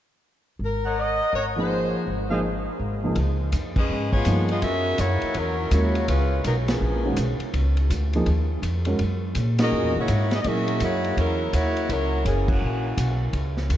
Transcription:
0.59 G#1
0.64 A#4
0.84 A#4 C#5 D#5 F#5
1.00 D#5
1.33 G#1 A#4 C#5 D#5 F#5
1.56 F3 A#3 D#4 G#4 C5
2.07 G#1
2.30 F3 A#3 D#4 G#4 C5 D#5 F5
2.79 G#1
3.03 C#2 F3 A#3 D#4 G#4
3.16 C#2, kick, ride
3.52 F2, kick, hi-hat pedal, ride
3.76 C#4 G#4 B4 D#5, kick, crash
3.89 G#2
4.12 B3 F4 G#4 C#5, kick
4.25 G2 F3 A#3 D#4 G#4, kick, hi-hat pedal, ride
4.49 B3 F4 G#4 D#5, ride
4.61 F#2 C#4 F#4 A#4 E5, kick, ride
4.98 F#2 A#3 E4 F#4 C#5, kick, hi-hat pedal, ride
5.21 muted upright bass stroke, ride
5.34 E2 F#3 C#4 E4 A#4, kick, ride
5.71 D#2 G#3 A#3 C#4 E4 F#4 A#4 C#5, kick, hi-hat pedal, ride
5.95 ride
6.08 C#2 G#3 C#4 F4 B4, kick, ride
6.44 B1 F#3 B3 D#4 A#4, kick, hi-hat pedal, ride
6.68 F3 B3 C#4 G#4, snare, ride
6.80 A#1
7.05 D#3 G#3 C#4 F#4
7.16 B1, kick, hi-hat pedal, ride
7.39 muted upright bass stroke, ride
7.54 C#2, kick, ride
7.77 ride
7.90 D2, kick, hi-hat pedal, ride
8.13 F3 A#3 D#4 G#4, ride
8.26 D#2, kick, ride
8.62 F2, kick, hi-hat pedal, ride
8.85 G#3 C#4 F#4 A#4, ride
8.99 F#2, kick, ride
9.35 A#2, kick, hi-hat pedal, ride
9.59 A#2 D#4 G#4 A#4 D#5, snare, ride
9.63 C#4 F#4 A#4
9.72 F#2
9.84 E2
9.96 C#2 E4 F#4 C#5
10.00 A#3
10.08 G#2, kick, hi-hat pedal, ride
10.31 B3 E4 G#4, snare, ride
10.36 D#5
10.41 A#2 F#3 D#5, kick, ride
10.46 A#3 C#4 E4 F#4 G#4 A#4 E5
10.68 ride
10.80 F#2 A#3 E4 F#4 C#5, kick, hi-hat pedal, ride
11.04 ride
11.17 E2 F#3 C#4 E4 A#4, kick, ride
11.53 D#2 A#3 E4 F#4 C#5, kick, hi-hat pedal, ride
11.77 ride
11.89 C#2 F#3 C#4 E4 A#4, kick, ride
12.25 F#1 E3 A#3 C#4 G#4, kick, hi-hat pedal, ride
12.48 E3 A#3 C#4 F#4, kick, crash
12.61 A#1
12.97 B1, kick, hi-hat pedal, ride
13.33 C#2, kick, ride
13.57 snare
13.70 D#2, kick, hi-hat pedal, ride

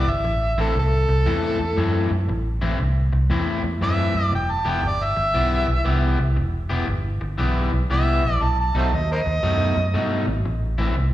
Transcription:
Already playing: D5
0.06 G1 E5, muted clean electric guitar stroke
0.24 A1, muted clean electric guitar stroke
0.58 A1 A2 E3 C4 E4 A4
0.75 C2, muted clean electric guitar stroke
0.79 A4
1.09 C2, muted clean electric guitar stroke
1.26 E2 A2 E3 C4 E4
1.60 E2, muted clean electric guitar stroke
1.76 F#2 A2 E3 C4 E4
2.11 F#2, muted clean electric guitar stroke
2.28 A1, muted clean electric guitar stroke
2.61 A1 A2 E3 C4 E4
2.79 C2, muted clean electric guitar stroke
3.13 C2, muted clean electric guitar stroke
3.30 E2 A2 E3 C4 E4
3.64 E2, muted clean electric guitar stroke
3.81 F#2 A2 E3 C4 E4 E5
4.15 F#2, muted clean electric guitar stroke
4.31 E1 G5, muted clean electric guitar stroke
4.51 A5
4.65 E1 E3 B3 E4 G4
4.70 G5
4.83 G1, muted clean electric guitar stroke
4.88 D5
5.04 E5
5.17 G1, muted clean electric guitar stroke
5.34 B1 E3 B3 E4 G4
5.68 B1, muted clean electric guitar stroke
5.85 C2 E3 B3 E4 G4
6.19 C2, muted clean electric guitar stroke
6.36 E1, muted clean electric guitar stroke
6.69 E1 E3 B3 E4 G4
6.87 G1, muted clean electric guitar stroke
7.21 G1, muted clean electric guitar stroke
7.38 B1 E3 B3 E4 G4
7.72 B1, muted clean electric guitar stroke
7.90 C2 E3 B3 E4 G4 E5
8.24 A#1, muted clean electric guitar stroke
8.35 D5
8.41 B1 A5, muted clean electric guitar stroke
8.61 A5
8.75 B1 B2 F#3 A3 D#4 C5 E5 A5
8.93 D#2 D#5, muted clean electric guitar stroke
9.12 A#4 C5 D#5
9.26 D#2, muted clean electric guitar stroke
9.43 F#2 B2 F#3 A3 D#4
9.77 F#2, muted clean electric guitar stroke
9.94 G2 B2 F#3 A3 D#4
10.27 G#1, muted clean electric guitar stroke
10.44 A1, muted clean electric guitar stroke
10.78 A1 A2 E3 C4 E4
10.96 C2, muted clean electric guitar stroke

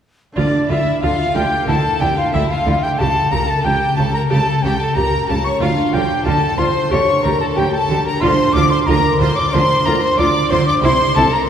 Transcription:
0.32 D2 D3 A3 D4 F4 D5
0.37 D3
0.69 D2 D3 E4 F4 E5
1.02 D2 D3 F4 F5
1.34 D2 D3 F4 G4 G5
1.63 A#3 E4 G4
1.67 D2 D3 E4 A4 A5
2.00 D2 D3 E4 G4 G5
2.17 F4 F5
2.32 D2 D3 E4 E5
2.49 F4 F5
2.66 D2 D3 E4
2.83 G4 G5
2.95 A3 E4 G4
2.99 C#2 C#3 G4 A4 A5
3.31 C#2 C#3 G4 A#4 A#5
3.48 A4 A5
3.64 C#2 C#3 G4 G5
3.97 C#2 C#3 G4 A4 A5
4.13 A#4 A#5
4.29 C#2 C#3 G4 A4 A5
4.62 C#2 C#3 G4 G5
4.79 A4 A5
4.95 C#2 C#3 G4 A#4 A#5
5.28 C#2 C#3 G4 A4 A5
5.45 C#5 C#6
5.57 D2 A3 D4 F4
5.61 D3 F4 F5
5.93 D2 D3 F4 G4 G5
6.26 D2 D3 F4 A4 A5
6.58 D2 D3 F4 C5 C6
6.88 D2 D3 A3 E4 G4 C#5 C#6
6.93 D3
7.24 D2 D3 G4 A#4 A#5
7.40 A4 A5
7.56 D2 D3 G4 G5
7.72 A4 A5
7.89 D2 D3 G4
8.04 A#4 A#5
8.18 A3 D4 F4 C5 C6
8.22 D2 D3 C6
8.53 D2 D3 F4 D5 D6
8.70 C5 C6
8.86 D2 D3 F4 A#4 A#5
9.19 D2 D3 F4 C5 C6
9.36 D5 D6
9.52 D2 D3 F4 C5 C6
9.85 D2 D3 F4 A#4 A#5
10.02 C5 C6
10.18 D2 D3 F4 D5 D6
10.50 D2 D3 F4 C5 C6
10.66 D5 D6
10.78 C4 E4 G4
10.82 C2 C3 E4 C5 C6
11.15 C2 C3 E4 A4 A5
11.32 A#4 A#5

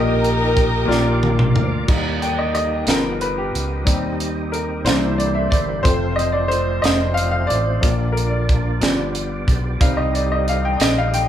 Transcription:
Already playing: A#1 A#2 A#3 D#4 G4 A#4 D#5 G5 D#6
0.24 closed hi-hat
0.57 kick, closed hi-hat
0.85 A#1 A#2 A#3 F4 A#4 D5 F5 D6
0.91 snare
1.23 high tom
1.39 mid tom
1.55 D2, mid tom
1.86 D#2 G3 A#3 D#4 G4 D#5, kick, crash
2.22 G5, closed hi-hat
2.39 D#5
2.55 D#5, closed hi-hat
2.85 G1 F3 B3 D#4 F4 G4 A#4, snare, closed hi-hat
3.21 B4, closed hi-hat
3.38 G4
3.54 C#2, closed hi-hat
3.85 D#2 G3 C4 D#4, kick, closed hi-hat
4.20 closed hi-hat
4.52 A#4, closed hi-hat
4.84 C2 E3 A#3 D4 E4 G4 C5, snare, closed hi-hat
5.18 D5, closed hi-hat
5.35 E5
5.50 G1 D5, kick, closed hi-hat
5.83 F1 F3 A3 C4 F4 C5, kick, closed hi-hat
6.16 D#5, closed hi-hat
6.32 D5
6.48 C5, closed hi-hat
6.82 F1 D#5, snare, closed hi-hat
7.14 F5, closed hi-hat
7.31 F5
7.47 A1 D5, closed hi-hat
7.81 A#1 F3 A#3 D4 D5, kick, closed hi-hat
8.12 A#4
8.17 closed hi-hat
8.29 D5
8.49 kick, closed hi-hat
8.81 G1 F3 B3 D4 G4, snare, closed hi-hat
9.15 closed hi-hat
9.48 B1, kick, closed hi-hat
9.79 C2 G3 C4 D#4 D#5 F5, kick, closed hi-hat
9.97 D#5
10.15 D5, closed hi-hat
10.32 D#5
10.48 F5, closed hi-hat
10.65 G5
10.80 A#1 D#5, snare, closed hi-hat
10.98 F5
11.14 G5, closed hi-hat

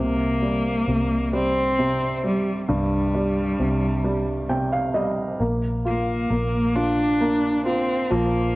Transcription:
Already playing: C2 C3
0.00 A#3
0.42 G3
0.87 C2 C3
1.33 G3 C4
1.79 C3
2.24 G3
2.68 C2 G2 G3
3.15 G3
3.60 C2 C3
4.04 G3
4.49 C3 G5
4.72 F5
4.94 G3 D#5
5.40 A#1 A#3
5.85 A#3 F4
6.30 A#1 A#3
6.75 D4 F4
7.21 A#3
7.65 C4 F4
8.11 A#1 F3 A#3

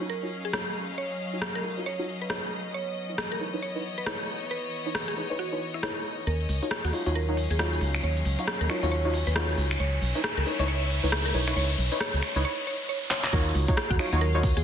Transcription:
Already playing: F#3 C#4 D#5 F5
0.01 D#4 F4 F#4 C#5
0.10 A#4
0.23 D#4 F4 F#4 C#5
0.45 G#4
0.53 D#4 F4 F#4 C#5, cross-stick
0.98 C#5
1.33 D#4 F4 F#4 C#5
1.42 cross-stick
1.55 A#4
1.64 D#4 F4 F#4 C#5
1.77 D#4 F4 F#4 C#5
1.86 C#5
1.99 D#4 F4 F#4 C#5
2.22 B4
2.30 D#4 F4 F#4 C#5, cross-stick
2.74 B3 C#5
3.09 E3 D#4 E4 B4 C#5
3.18 cross-stick
3.30 A#4 C#5
3.40 D#4 E4 B4 C#5
3.54 D#4 E4 B4 C#5
3.62 C#5
3.76 D#4 E4 B4 C#5
3.98 B4
4.06 D#4 E4 B4 C#5, cross-stick
4.51 B4
4.86 D#4 E4 B4 C#5
4.95 cross-stick
5.08 G#4
5.17 D#4 E4 B4 C#5
5.30 D#4 E4 B4 C#5
5.39 F#4
5.52 D#4 E4 B4 C#5
5.74 E4
5.83 D#4 E4 B4 C#5, cross-stick
6.27 D#2 C#4 A#4, riser
6.49 C#2, open hi-hat
6.60 F#3 D#4 F4 F#4 C#5, closed hi-hat
6.71 cross-stick
6.82 D#2 F#4 F5, closed hi-hat
6.93 D#4 F4 F#4 C#5, open hi-hat
7.06 D#2 D#4 F4 F#4 C#5, closed hi-hat
7.15 A#4
7.29 D#4 F4 F#4 C#5
7.37 open hi-hat
7.51 D#2 G#4, closed hi-hat
7.59 D#4 F4 F#4 C#5, cross-stick
7.73 closed hi-hat
7.81 C#2, open hi-hat
7.95 finger snap, closed hi-hat
8.04 D#2 C#5
8.17 closed hi-hat
8.25 C#2, open hi-hat
8.39 D#4 F4 F#4 C#5, closed hi-hat
8.48 cross-stick
8.61 D#2 A#4, closed hi-hat
8.70 D#4 F4 F#4 C#5, finger snap, open hi-hat
8.83 D#2 D#4 F4 F#4 C#5, closed hi-hat
8.92 C#5
9.05 D#4 F4 F#4 C#5
9.14 open hi-hat
9.27 D#2 B4, closed hi-hat
9.36 D#4 F4 F#4 C#5, cross-stick
9.49 closed hi-hat
9.58 C#2, open hi-hat
9.71 finger snap, closed hi-hat
9.80 C#2 C#5
10.01 B1 B4, open hi-hat
10.09 E5
10.15 D#4 E4 B4 C#5, closed hi-hat
10.24 cross-stick
10.37 C#2 A#4, closed hi-hat
10.46 D#4 E4 B4 C#5, open hi-hat
10.59 C#2 D#4 E4 B4 C#5, closed hi-hat
10.68 C#5
10.90 open hi-hat
11.03 C#2 D#4 E4 B4 C#5, closed hi-hat
11.12 cross-stick
11.26 A#4, closed hi-hat
11.34 B1 D#4 E4 B4 C#5, open hi-hat
11.48 D#4 E4 B4 C#5, finger snap, closed hi-hat
11.56 C#2 C#5
11.70 closed hi-hat
11.78 B1, open hi-hat
11.92 D#4 E4 B4 C#5, closed hi-hat
12.01 C#5, cross-stick
12.14 C#2, closed hi-hat
12.23 finger snap, open hi-hat
12.36 C#2 D#4 E4 B4 C#5, closed hi-hat
12.45 C#5
12.67 C#5
12.89 C#5
13.11 C#5, clap
13.24 clap
13.33 D#2 D#4 F4 F#4 A#4 C#5, kick
13.55 C#2, open hi-hat
13.64 F#3 F5
13.68 D#4 F4 F#4 C#5, kick, closed hi-hat
13.77 cross-stick
13.90 D#2 F#4, kick, closed hi-hat
13.99 D#4 F4 F#4 C#5 D#5, finger snap, open hi-hat
14.13 D#2 D#4 F4 F#4 C#5, closed hi-hat
14.21 A#4
14.35 D#4 F4 F#4 C#5
14.43 kick, open hi-hat
14.57 D#2 G#4, closed hi-hat

